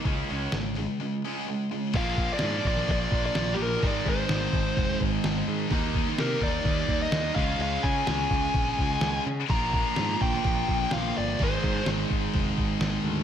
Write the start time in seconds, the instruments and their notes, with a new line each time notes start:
0.04 picked electric bass C#2, distorted electric guitar C#3 G#3 C#4, kick, open hi-hat
0.28 picked electric bass C#2, distorted electric guitar C#3 G#3 C#4, open hi-hat
0.52 picked electric bass G#1, distorted electric guitar C#3 G#3, snare, open hi-hat
0.75 distorted electric guitar C#3 G#3, open hi-hat
1.00 distorted electric guitar C#3 G#3
1.25 distorted electric guitar C#3 G#3 C#4
1.48 distorted electric guitar C#3 G#3
1.71 distorted electric guitar C#3 G#3
1.94 picked electric bass A#1, distorted electric guitar A#2 F3 D4, lead electric guitar F5, kick, crash
1.98 distorted electric guitar A#3
2.17 kick
2.34 lead electric guitar D5
2.39 picked electric bass G#2, snare, crash
2.65 picked electric bass A#1, lead electric guitar D5, kick
2.76 snare
2.88 picked electric bass A#1, lead electric guitar D5, kick, crash
3.12 picked electric bass A#1, kick
3.26 lead electric guitar D5
3.35 picked electric bass A#1, snare, crash
3.54 lead electric guitar G4
3.59 picked electric bass A#1
3.63 lead electric guitar A#4
3.83 picked electric bass G#1, distorted electric guitar G#2 D#3 G#3 C4 D#4, kick, crash
3.87 lead electric guitar D5
4.06 picked electric bass G#2, lead electric guitar C5, kick
4.29 picked electric bass G#1, snare, crash
4.53 picked electric bass G#1, kick
4.77 picked electric bass F1, kick, crash
5.00 picked electric bass G#1, kick
5.24 picked electric bass G#1, snare, crash
5.48 picked electric bass G#2
5.71 picked electric bass D#2, distorted electric guitar D#3 G3 A#3 D#4, kick, crash
5.94 kick
6.07 snare
6.18 picked electric bass C3, lead electric guitar A#4, snare, crash
6.41 picked electric bass D#2, lead electric guitar D5, kick
6.64 picked electric bass D#2, kick, crash
6.88 picked electric bass D#2, kick
7.02 lead electric guitar D#5
7.12 picked electric bass D#2, snare, crash
7.35 picked electric bass C#2, distorted electric guitar C#3 G#3 C#4, lead electric guitar F5, kick
7.39 distorted electric guitar F4
7.59 picked electric bass C#2, lead electric guitar F5, crash
7.83 picked electric bass C#3, lead electric guitar G#5, kick
8.07 picked electric bass C#2, lead electric guitar G#5, snare, crash
8.30 picked electric bass C#2, kick
8.54 picked electric bass A#1, kick, crash
8.78 picked electric bass C#2, kick
9.01 picked electric bass C#2, snare, crash
9.26 picked electric bass C#3
9.48 picked electric bass A#1, distorted electric guitar A#2 D3 F3, lead electric guitar A#5, kick, crash
9.53 distorted electric guitar A#3 F4
9.73 lead electric guitar A#5, kick
9.96 picked electric bass G#2, snare, crash
10.21 picked electric bass A#1, lead electric guitar G5, kick
10.33 snare
10.44 picked electric bass A#1, kick, crash
10.68 picked electric bass A#1, kick
10.91 picked electric bass A#1, lead electric guitar F5, snare, crash
11.18 picked electric bass G1, lead electric guitar D5
11.39 picked electric bass G#1, distorted electric guitar G#2 D#3, kick, crash
11.43 distorted electric guitar G#3 C4 D#4, lead electric guitar C5
11.63 picked electric bass G#2, kick
11.75 snare
11.86 picked electric bass G#1, snare, crash
12.10 picked electric bass G#1, kick
12.34 picked electric bass F1, kick, crash
12.57 picked electric bass G#1, kick
12.80 picked electric bass G#1, snare, crash
13.04 picked electric bass D2